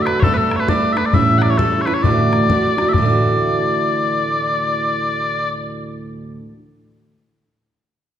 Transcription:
Already playing: D3 A3 D4 F#4
0.02 B4 E5
0.07 bodhran
0.20 G3 A4 C#5, bodhran
0.24 A3 B3 D4
0.34 A4 B4
0.51 bodhran
0.56 B4 C#5
0.67 G3 A3 B3 D4 D5, bodhran
0.93 D4 E5
0.97 A3 B3 B4, bodhran
1.05 D5
1.13 A2 E3 G3 C#4 E4 E5, bodhran
1.38 F#5, bodhran
1.43 D5
1.50 C#5
1.58 E3 G3 C#4 E4 A4, bodhran
1.81 C#5
1.86 G3 C#4 E4 B4, bodhran
1.94 C#5
2.02 D2 A2 E3 A3 D4 F#4 D5, bodhran
2.33 bodhran
2.48 E3 A3 D4 F#4, bodhran
2.77 E3 A3 D4 F#4, bodhran
2.88 D2 E5
2.93 A2 D5, bodhran
2.98 E3
3.02 A3 D4
3.09 F#4

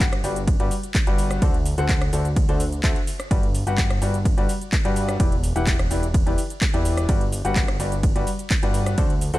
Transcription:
Already playing: G1
0.00 kick, clap, closed hi-hat, ride, cabasa
0.13 cross-stick, closed hi-hat
0.24 G1 G3 F#4 G4 B4 D5, open hi-hat, cabasa
0.36 closed hi-hat, cabasa
0.47 kick, closed hi-hat, ride, cabasa
0.60 G1 G3 F#4 G4 B4 D5, closed hi-hat
0.71 open hi-hat, cabasa
0.83 closed hi-hat, cabasa
0.94 kick, clap, closed hi-hat, ride, cabasa
1.07 G1 G3 F#4 G4 B4 D5, closed hi-hat
1.18 open hi-hat, cabasa
1.31 cross-stick, closed hi-hat, cabasa
1.42 D2 D3 F#4 A4 C5 D5, kick, closed hi-hat, ride, cabasa
1.54 closed hi-hat
1.66 open hi-hat, cabasa
1.78 D2 D3 F#4 A4 C5 F#5, closed hi-hat, cabasa
1.89 kick, clap, closed hi-hat, ride, cabasa
2.02 cross-stick, closed hi-hat
2.13 D2 D3 F#4 A4 C5 D5, open hi-hat, cabasa
2.25 closed hi-hat, cabasa
2.36 kick, closed hi-hat, ride, cabasa
2.49 D2 D3 F#4 A4 C5 D5, closed hi-hat
2.60 open hi-hat, cabasa
2.72 closed hi-hat, cabasa
2.83 D2 D3 F#4 A4 C5 E5, kick, clap, closed hi-hat, ride, cabasa
2.96 closed hi-hat
3.07 open hi-hat, cabasa
3.20 cross-stick, closed hi-hat, cabasa
3.31 G1 G3 F#4 G4 B4 D5, kick, closed hi-hat, ride, cabasa
3.43 closed hi-hat
3.55 open hi-hat, cabasa
3.67 G1 G3 F#4 G4 B4 F#5, closed hi-hat, cabasa
3.78 kick, clap, closed hi-hat, ride, cabasa
3.90 cross-stick, closed hi-hat
4.02 G1 G3 F#4 G4 B4 D5, open hi-hat, cabasa
4.14 closed hi-hat, cabasa
4.25 kick, closed hi-hat, ride, cabasa
4.38 G1 G3 F#4 G4 B4 D5, closed hi-hat
4.49 open hi-hat, cabasa
4.61 closed hi-hat, cabasa
4.72 kick, clap, closed hi-hat, ride, cabasa
4.85 G2 G3 F#4 G4 B4 D5, closed hi-hat
4.96 open hi-hat, cabasa
5.09 cross-stick, closed hi-hat, cabasa
5.20 E1 E3 E4 G4 B4 D5, kick, closed hi-hat, ride, cabasa
5.32 closed hi-hat
5.44 open hi-hat, cabasa
5.56 E1 E3 E4 G4 B4 F#5, closed hi-hat, cabasa
5.67 kick, clap, closed hi-hat, ride, cabasa
5.79 cross-stick, closed hi-hat
5.91 E1 E3 E4 G4 B4 D5, open hi-hat, cabasa
6.03 closed hi-hat, cabasa
6.14 kick, closed hi-hat, ride, cabasa
6.26 E1 E3 E4 G4 B4 D5, closed hi-hat
6.38 open hi-hat, cabasa
6.50 closed hi-hat, cabasa
6.61 kick, clap, closed hi-hat, ride, cabasa
6.74 E1 E3 E4 G4 B4 D5, closed hi-hat
6.85 open hi-hat, cabasa
6.97 cross-stick, closed hi-hat, cabasa
7.09 G1 G3 F#4 G4 B4 D5, kick, closed hi-hat, ride, cabasa
7.21 closed hi-hat
7.32 open hi-hat, cabasa
7.45 G1 G3 F#4 G4 B4 F#5, closed hi-hat, cabasa
7.56 kick, clap, closed hi-hat, ride, cabasa
7.68 cross-stick, closed hi-hat
7.80 G1 G3 F#4 G4 B4 D5, open hi-hat, cabasa
7.92 closed hi-hat, cabasa
8.03 kick, closed hi-hat, ride, cabasa
8.16 G1 G3 F#4 G4 B4 D5, closed hi-hat
8.27 open hi-hat, cabasa
8.39 closed hi-hat, cabasa
8.50 kick, clap, closed hi-hat, ride, cabasa
8.63 G1 G3 F#4 G4 B4 D5, closed hi-hat
8.74 open hi-hat, cabasa
8.86 cross-stick, closed hi-hat, cabasa
8.98 D2 D3 F#4 A4 C5 D5, kick, closed hi-hat, ride, cabasa
9.10 closed hi-hat
9.21 open hi-hat, cabasa
9.34 D2 D3 F#4 A4 C5 F#5, closed hi-hat, cabasa

